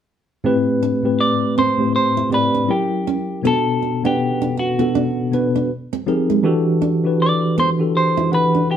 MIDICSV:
0, 0, Header, 1, 5, 480
1, 0, Start_track
1, 0, Tempo, 750000
1, 277, Time_signature, 4, 2, 24, 8
1, 5612, End_track
2, 0, Start_track
2, 0, Title_t, "Clean electric guitar"
2, 0, Program_c, 0, 27
2, 771, Note_on_c, 0, 74, 86
2, 988, Note_off_c, 0, 74, 0
2, 1015, Note_on_c, 0, 72, 93
2, 1245, Note_off_c, 0, 72, 0
2, 1252, Note_on_c, 0, 72, 90
2, 1469, Note_off_c, 0, 72, 0
2, 1499, Note_on_c, 0, 71, 89
2, 1733, Note_on_c, 0, 67, 77
2, 1735, Note_off_c, 0, 71, 0
2, 2179, Note_off_c, 0, 67, 0
2, 2220, Note_on_c, 0, 69, 84
2, 2598, Note_off_c, 0, 69, 0
2, 2601, Note_on_c, 0, 67, 85
2, 2938, Note_off_c, 0, 67, 0
2, 2940, Note_on_c, 0, 66, 74
2, 3623, Note_off_c, 0, 66, 0
2, 4621, Note_on_c, 0, 74, 83
2, 4856, Note_off_c, 0, 74, 0
2, 4861, Note_on_c, 0, 72, 89
2, 4922, Note_off_c, 0, 72, 0
2, 5099, Note_on_c, 0, 72, 93
2, 5312, Note_off_c, 0, 72, 0
2, 5340, Note_on_c, 0, 71, 83
2, 5553, Note_off_c, 0, 71, 0
2, 5576, Note_on_c, 0, 67, 75
2, 5612, Note_off_c, 0, 67, 0
2, 5612, End_track
3, 0, Start_track
3, 0, Title_t, "Nylon-string guitar"
3, 0, Program_c, 1, 24
3, 529, Note_on_c, 1, 62, 64
3, 604, Note_off_c, 1, 62, 0
3, 1009, Note_on_c, 1, 60, 74
3, 1085, Note_off_c, 1, 60, 0
3, 1390, Note_on_c, 1, 64, 62
3, 1441, Note_off_c, 1, 64, 0
3, 1628, Note_on_c, 1, 62, 56
3, 1680, Note_off_c, 1, 62, 0
3, 1967, Note_on_c, 1, 61, 66
3, 2043, Note_off_c, 1, 61, 0
3, 2208, Note_on_c, 1, 59, 82
3, 2284, Note_off_c, 1, 59, 0
3, 2592, Note_on_c, 1, 62, 64
3, 2643, Note_off_c, 1, 62, 0
3, 2826, Note_on_c, 1, 62, 67
3, 2879, Note_off_c, 1, 62, 0
3, 3066, Note_on_c, 1, 66, 64
3, 3119, Note_off_c, 1, 66, 0
3, 3169, Note_on_c, 1, 62, 76
3, 3245, Note_off_c, 1, 62, 0
3, 3556, Note_on_c, 1, 62, 62
3, 3606, Note_off_c, 1, 62, 0
3, 3794, Note_on_c, 1, 60, 69
3, 3844, Note_off_c, 1, 60, 0
3, 4031, Note_on_c, 1, 56, 64
3, 4082, Note_off_c, 1, 56, 0
3, 4363, Note_on_c, 1, 62, 66
3, 4440, Note_off_c, 1, 62, 0
3, 4849, Note_on_c, 1, 59, 70
3, 4925, Note_off_c, 1, 59, 0
3, 5231, Note_on_c, 1, 64, 64
3, 5282, Note_off_c, 1, 64, 0
3, 5470, Note_on_c, 1, 62, 55
3, 5521, Note_off_c, 1, 62, 0
3, 5612, End_track
4, 0, Start_track
4, 0, Title_t, "Tine electric piano"
4, 0, Program_c, 2, 4
4, 281, Note_on_c, 2, 45, 95
4, 284, Note_on_c, 2, 57, 83
4, 286, Note_on_c, 2, 60, 88
4, 294, Note_on_c, 2, 67, 81
4, 295, Note_on_c, 2, 71, 97
4, 391, Control_c, 2, 64, 127
4, 627, Note_off_c, 2, 45, 0
4, 628, Note_off_c, 2, 57, 0
4, 630, Note_off_c, 2, 60, 0
4, 633, Note_off_c, 2, 67, 0
4, 634, Note_off_c, 2, 71, 0
4, 660, Note_on_c, 2, 45, 60
4, 663, Note_on_c, 2, 57, 56
4, 670, Note_on_c, 2, 60, 51
4, 672, Note_on_c, 2, 67, 55
4, 676, Note_on_c, 2, 71, 67
4, 1094, Note_off_c, 2, 45, 0
4, 1095, Note_off_c, 2, 57, 0
4, 1099, Note_off_c, 2, 60, 0
4, 1100, Note_off_c, 2, 67, 0
4, 1102, Note_off_c, 2, 71, 0
4, 1136, Note_on_c, 2, 45, 62
4, 1142, Note_on_c, 2, 57, 55
4, 1145, Note_on_c, 2, 60, 57
4, 1150, Note_on_c, 2, 67, 59
4, 1154, Note_on_c, 2, 72, 67
4, 1452, Note_off_c, 2, 45, 0
4, 1455, Note_off_c, 2, 57, 0
4, 1456, Note_off_c, 2, 60, 0
4, 1459, Note_off_c, 2, 67, 0
4, 1461, Note_off_c, 2, 72, 0
4, 1474, Note_on_c, 2, 45, 65
4, 1477, Note_on_c, 2, 57, 58
4, 1483, Note_on_c, 2, 60, 61
4, 1483, Note_on_c, 2, 67, 63
4, 1489, Note_on_c, 2, 74, 76
4, 1713, Note_on_c, 2, 54, 65
4, 1716, Note_off_c, 2, 45, 0
4, 1717, Note_off_c, 2, 57, 0
4, 1718, Note_on_c, 2, 61, 62
4, 1720, Note_off_c, 2, 60, 0
4, 1720, Note_off_c, 2, 67, 0
4, 1720, Note_on_c, 2, 64, 61
4, 1723, Note_off_c, 2, 74, 0
4, 1725, Control_c, 2, 64, 0
4, 1727, Note_on_c, 2, 67, 60
4, 1730, Note_on_c, 2, 70, 70
4, 1852, Control_c, 2, 64, 127
4, 2164, Note_off_c, 2, 54, 0
4, 2166, Note_off_c, 2, 61, 0
4, 2167, Note_off_c, 2, 64, 0
4, 2171, Note_off_c, 2, 67, 0
4, 2172, Note_off_c, 2, 70, 0
4, 2193, Note_on_c, 2, 47, 72
4, 2197, Note_on_c, 2, 59, 71
4, 2201, Note_on_c, 2, 62, 69
4, 2205, Note_on_c, 2, 66, 75
4, 2206, Control_c, 2, 64, 0
4, 2208, Note_on_c, 2, 69, 94
4, 2312, Control_c, 2, 64, 127
4, 2543, Note_off_c, 2, 47, 0
4, 2545, Note_off_c, 2, 59, 0
4, 2547, Note_off_c, 2, 62, 0
4, 2549, Note_off_c, 2, 66, 0
4, 2550, Note_off_c, 2, 69, 0
4, 2578, Note_on_c, 2, 47, 63
4, 2584, Note_on_c, 2, 59, 55
4, 2586, Note_on_c, 2, 61, 46
4, 2590, Note_on_c, 2, 78, 58
4, 2595, Note_on_c, 2, 71, 66
4, 2617, Note_off_c, 2, 61, 0
4, 2629, Note_on_c, 2, 62, 57
4, 3013, Note_off_c, 2, 47, 0
4, 3016, Note_off_c, 2, 59, 0
4, 3019, Note_off_c, 2, 78, 0
4, 3021, Note_off_c, 2, 71, 0
4, 3038, Note_off_c, 2, 62, 0
4, 3062, Note_on_c, 2, 47, 61
4, 3063, Note_on_c, 2, 59, 56
4, 3071, Note_on_c, 2, 62, 56
4, 3073, Note_on_c, 2, 66, 59
4, 3078, Note_on_c, 2, 69, 69
4, 3375, Note_off_c, 2, 47, 0
4, 3375, Note_off_c, 2, 59, 0
4, 3379, Note_off_c, 2, 62, 0
4, 3380, Note_off_c, 2, 66, 0
4, 3383, Note_off_c, 2, 69, 0
4, 3402, Note_on_c, 2, 47, 65
4, 3405, Note_on_c, 2, 59, 55
4, 3412, Note_on_c, 2, 62, 62
4, 3414, Note_on_c, 2, 66, 57
4, 3418, Note_on_c, 2, 71, 75
4, 3640, Note_off_c, 2, 47, 0
4, 3641, Note_off_c, 2, 59, 0
4, 3645, Note_off_c, 2, 62, 0
4, 3645, Note_off_c, 2, 66, 0
4, 3646, Control_c, 2, 64, 0
4, 3648, Note_off_c, 2, 71, 0
4, 3740, Control_c, 2, 64, 127
4, 3882, Note_on_c, 2, 53, 77
4, 3884, Note_on_c, 2, 60, 65
4, 3885, Note_on_c, 2, 63, 67
4, 3889, Note_on_c, 2, 67, 63
4, 3891, Note_on_c, 2, 68, 65
4, 3895, Note_on_c, 2, 70, 80
4, 4104, Note_off_c, 2, 53, 0
4, 4105, Note_off_c, 2, 60, 0
4, 4105, Note_off_c, 2, 63, 0
4, 4108, Note_off_c, 2, 67, 0
4, 4109, Note_off_c, 2, 68, 0
4, 4110, Note_off_c, 2, 70, 0
4, 4115, Note_on_c, 2, 52, 97
4, 4120, Note_on_c, 2, 62, 92
4, 4125, Note_on_c, 2, 66, 88
4, 4126, Control_c, 2, 64, 0
4, 4130, Note_on_c, 2, 67, 82
4, 4134, Note_on_c, 2, 69, 97
4, 4234, Control_c, 2, 64, 127
4, 4464, Note_off_c, 2, 52, 0
4, 4466, Note_off_c, 2, 62, 0
4, 4469, Note_off_c, 2, 66, 0
4, 4471, Note_off_c, 2, 67, 0
4, 4473, Note_off_c, 2, 69, 0
4, 4504, Note_on_c, 2, 52, 63
4, 4508, Note_on_c, 2, 62, 59
4, 4513, Note_on_c, 2, 66, 59
4, 4517, Note_on_c, 2, 67, 58
4, 4522, Note_on_c, 2, 71, 71
4, 4936, Note_off_c, 2, 52, 0
4, 4938, Note_off_c, 2, 62, 0
4, 4940, Note_off_c, 2, 66, 0
4, 4942, Note_off_c, 2, 67, 0
4, 4945, Note_off_c, 2, 71, 0
4, 4980, Note_on_c, 2, 52, 62
4, 4985, Note_on_c, 2, 62, 60
4, 4988, Note_on_c, 2, 66, 57
4, 4992, Note_on_c, 2, 67, 59
4, 4998, Note_on_c, 2, 69, 70
4, 5294, Note_off_c, 2, 52, 0
4, 5296, Note_off_c, 2, 62, 0
4, 5298, Note_off_c, 2, 66, 0
4, 5300, Note_off_c, 2, 67, 0
4, 5303, Note_off_c, 2, 69, 0
4, 5316, Note_on_c, 2, 52, 68
4, 5322, Note_on_c, 2, 62, 59
4, 5325, Note_on_c, 2, 78, 60
4, 5331, Note_on_c, 2, 67, 58
4, 5332, Note_on_c, 2, 71, 72
4, 5612, Note_off_c, 2, 52, 0
4, 5612, Note_off_c, 2, 62, 0
4, 5612, Note_off_c, 2, 67, 0
4, 5612, Note_off_c, 2, 71, 0
4, 5612, Note_off_c, 2, 78, 0
4, 5612, End_track
5, 0, Start_track
5, 0, Title_t, "Muted nylon-string guitar strokes"
5, 1486, Note_on_c, 9, 29, 42
5, 1550, Note_off_c, 9, 29, 0
5, 2448, Note_on_c, 9, 29, 38
5, 2512, Note_off_c, 9, 29, 0
5, 2927, Note_on_c, 9, 29, 39
5, 2991, Note_off_c, 9, 29, 0
5, 3413, Note_on_c, 9, 29, 45
5, 3477, Note_off_c, 9, 29, 0
5, 3891, Note_on_c, 9, 29, 38
5, 3955, Note_off_c, 9, 29, 0
5, 5330, Note_on_c, 9, 29, 44
5, 5394, Note_off_c, 9, 29, 0
5, 5612, End_track
0, 0, End_of_file